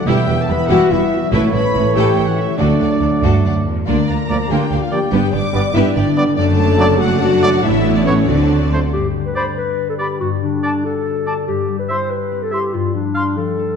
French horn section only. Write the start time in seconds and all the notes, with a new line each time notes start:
0.07 G4
0.40 A4
0.49 B4
0.69 F#4
0.91 E4
1.33 E4
1.54 B4
1.95 G4
2.28 F#4
2.38 E4
2.58 D4
3.88 D4
4.08 A#4
4.48 G4
4.83 F4
4.92 G4
5.33 D5
5.74 E4
5.96 D4
6.37 D4
6.58 A4
6.99 F#4
7.20 F#4
7.63 E4
7.98 D4
8.05 C#4
8.27 D4
8.94 G3
11.49 G3